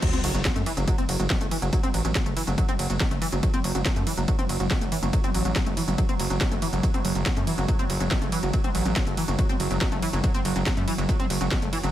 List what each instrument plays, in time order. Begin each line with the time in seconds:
0.02 synth arpeggio sound F#3, ambient pad F#3, kick, closed hi-hat, crash, ride, sub drop
0.13 synth arpeggio sound C4, closed hi-hat, mid tom
0.24 analog synth bass F#1, synth arpeggio sound F#3, open hi-hat, ride
0.34 analog synth bass F#1, synth arpeggio sound F#3, closed hi-hat, mid tom
0.45 synth arpeggio sound F#3, kick, snare, closed hi-hat, ride
0.56 analog synth bass F#2, synth arpeggio sound A3, closed hi-hat, mid tom
0.66 synth arpeggio sound E3, open hi-hat, ride
0.77 analog synth bass F#1, synth arpeggio sound F#3, closed hi-hat, mid tom
0.88 synth arpeggio sound F#3, kick, closed hi-hat, ride
0.98 synth arpeggio sound C4, closed hi-hat, mid tom
1.09 analog synth bass F#1, synth arpeggio sound F#3, open hi-hat, ride
1.20 analog synth bass F#1, synth arpeggio sound F#3, closed hi-hat, mid tom
1.30 synth arpeggio sound F#3, kick, snare, ride
1.41 analog synth bass F#1, synth arpeggio sound A3, closed hi-hat, mid tom
1.51 synth arpeggio sound E3, open hi-hat, ride
1.62 analog synth bass F#1, synth arpeggio sound F#3, closed hi-hat, mid tom
1.73 synth arpeggio sound F#3, kick, closed hi-hat, ride
1.83 synth arpeggio sound C4, closed hi-hat, mid tom
1.94 analog synth bass A1, synth arpeggio sound F#3, open hi-hat, ride
2.05 analog synth bass A1, synth arpeggio sound F#3, closed hi-hat, mid tom
2.15 synth arpeggio sound F#3, kick, snare, closed hi-hat, ride
2.26 analog synth bass F#1, synth arpeggio sound A3, closed hi-hat, mid tom
2.37 synth arpeggio sound E3, open hi-hat, ride
2.47 analog synth bass F#1, synth arpeggio sound F#3, closed hi-hat, mid tom
2.58 synth arpeggio sound F#3, kick, closed hi-hat, ride
2.69 synth arpeggio sound C4, closed hi-hat, mid tom
2.79 analog synth bass F#1, synth arpeggio sound F#3, open hi-hat, ride
2.90 analog synth bass F#1, synth arpeggio sound F#3, closed hi-hat, mid tom
3.00 synth arpeggio sound F#3, kick, snare, ride
3.11 analog synth bass F#1, synth arpeggio sound A3, closed hi-hat, mid tom
3.22 synth arpeggio sound E3, open hi-hat, ride
3.32 analog synth bass F#1, synth arpeggio sound F#3, closed hi-hat, mid tom
3.43 synth arpeggio sound F#3, kick, closed hi-hat, ride
3.54 synth arpeggio sound C4, closed hi-hat, mid tom
3.64 analog synth bass F#1, synth arpeggio sound F#3, open hi-hat, ride
3.75 analog synth bass F#1, synth arpeggio sound F#3, closed hi-hat, mid tom
3.85 synth arpeggio sound F#3, kick, snare, closed hi-hat, ride
3.96 analog synth bass F#2, synth arpeggio sound A3, closed hi-hat, mid tom
4.07 synth arpeggio sound E3, open hi-hat, ride
4.17 analog synth bass F#1, synth arpeggio sound F#3, closed hi-hat, mid tom
4.28 synth arpeggio sound F#3, kick, closed hi-hat, ride
4.39 synth arpeggio sound C4, closed hi-hat, mid tom
4.49 analog synth bass F#1, synth arpeggio sound F#3, open hi-hat, ride
4.60 analog synth bass F#1, synth arpeggio sound F#3, closed hi-hat, mid tom
4.70 synth arpeggio sound F#3, kick, snare, ride
4.81 analog synth bass F#1, synth arpeggio sound A3, closed hi-hat, mid tom
4.92 synth arpeggio sound E3, open hi-hat, ride
5.03 analog synth bass F#1, synth arpeggio sound F#3, closed hi-hat, mid tom
5.13 synth arpeggio sound F#3, kick, closed hi-hat, ride
5.24 synth arpeggio sound C4, closed hi-hat, mid tom
5.34 analog synth bass A1, synth arpeggio sound F#3, open hi-hat, ride
5.45 analog synth bass A1, synth arpeggio sound F#3, closed hi-hat, mid tom
5.56 synth arpeggio sound F#3, kick, snare, closed hi-hat, ride
5.66 analog synth bass F#1, synth arpeggio sound A3, closed hi-hat, mid tom
5.77 synth arpeggio sound E3, open hi-hat, ride
5.88 analog synth bass F#1, synth arpeggio sound F#3, closed hi-hat, mid tom
5.98 synth arpeggio sound F#3, kick, closed hi-hat, ride
6.09 synth arpeggio sound C4, closed hi-hat, mid tom
6.19 analog synth bass F#1, synth arpeggio sound F#3, open hi-hat, ride
6.30 analog synth bass F#1, synth arpeggio sound F#3, closed hi-hat, mid tom
6.41 synth arpeggio sound F#3, kick, snare, closed hi-hat, ride
6.51 analog synth bass F#1, synth arpeggio sound A3, closed hi-hat, mid tom
6.62 synth arpeggio sound E3, open hi-hat, ride
6.73 analog synth bass F#1, synth arpeggio sound F#3, closed hi-hat, mid tom
6.83 synth arpeggio sound F#3, kick, closed hi-hat, ride
6.94 synth arpeggio sound C4, closed hi-hat, mid tom
7.05 analog synth bass F#1, synth arpeggio sound F#3, open hi-hat, ride
7.15 analog synth bass F#1, synth arpeggio sound F#3, closed hi-hat, mid tom
7.26 synth arpeggio sound F#3, kick, snare, closed hi-hat, ride
7.37 analog synth bass F#2, synth arpeggio sound A3, closed hi-hat, mid tom
7.47 synth arpeggio sound E3, open hi-hat, ride
7.58 analog synth bass F#1, synth arpeggio sound F#3, closed hi-hat, mid tom
7.68 synth arpeggio sound F#3, kick, closed hi-hat, ride
7.79 synth arpeggio sound C4, closed hi-hat, mid tom
7.90 analog synth bass F#1, synth arpeggio sound F#3, open hi-hat, ride
8.00 analog synth bass F#1, synth arpeggio sound F#3, closed hi-hat, mid tom
8.11 synth arpeggio sound F#3, kick, snare, ride
8.22 analog synth bass F#1, synth arpeggio sound A3, closed hi-hat, mid tom
8.32 synth arpeggio sound E3, open hi-hat, ride
8.43 analog synth bass F#1, synth arpeggio sound F#3, closed hi-hat, mid tom
8.53 synth arpeggio sound F#3, kick, closed hi-hat, ride
8.64 synth arpeggio sound C4, closed hi-hat, mid tom
8.75 analog synth bass A1, synth arpeggio sound F#3, open hi-hat, ride
8.85 analog synth bass A1, synth arpeggio sound F#3, closed hi-hat, mid tom
8.96 synth arpeggio sound F#3, kick, snare, closed hi-hat, ride
9.07 analog synth bass F#1, synth arpeggio sound A3, closed hi-hat, mid tom
9.17 synth arpeggio sound E3, open hi-hat, ride
9.28 analog synth bass F#1, synth arpeggio sound F#3, closed hi-hat, mid tom
9.39 synth arpeggio sound F#3, kick, closed hi-hat, ride
9.49 synth arpeggio sound C4, closed hi-hat, mid tom
9.60 analog synth bass F#1, synth arpeggio sound F#3, open hi-hat, ride
9.71 analog synth bass F#1, synth arpeggio sound F#3, closed hi-hat, mid tom
9.81 synth arpeggio sound F#3, kick, snare, ride
9.92 analog synth bass F#1, synth arpeggio sound A3, closed hi-hat, mid tom
10.02 synth arpeggio sound E3, open hi-hat, ride
10.13 analog synth bass F#1, synth arpeggio sound F#3, closed hi-hat, mid tom
10.24 synth arpeggio sound F#3, kick, closed hi-hat, ride
10.34 synth arpeggio sound C4, closed hi-hat, mid tom
10.45 analog synth bass F#1, synth arpeggio sound F#3, open hi-hat, ride
10.56 analog synth bass F#1, synth arpeggio sound F#3, closed hi-hat, mid tom
10.66 synth arpeggio sound F#3, kick, snare, closed hi-hat, ride
10.77 analog synth bass F#2, synth arpeggio sound A3, closed hi-hat, mid tom
10.88 synth arpeggio sound E3, open hi-hat, ride
10.98 analog synth bass F#1, synth arpeggio sound F#3, closed hi-hat, mid tom
11.09 synth arpeggio sound F#3, kick, closed hi-hat, ride
11.20 synth arpeggio sound C4, closed hi-hat, mid tom
11.30 analog synth bass F#1, synth arpeggio sound F#3, open hi-hat, ride
11.41 analog synth bass F#1, synth arpeggio sound F#3, closed hi-hat, mid tom
11.51 synth arpeggio sound F#3, kick, snare, ride
11.62 analog synth bass F#1, synth arpeggio sound A3, closed hi-hat, mid tom
11.73 synth arpeggio sound E3, open hi-hat, ride
11.83 analog synth bass F#1, synth arpeggio sound F#3, closed hi-hat, mid tom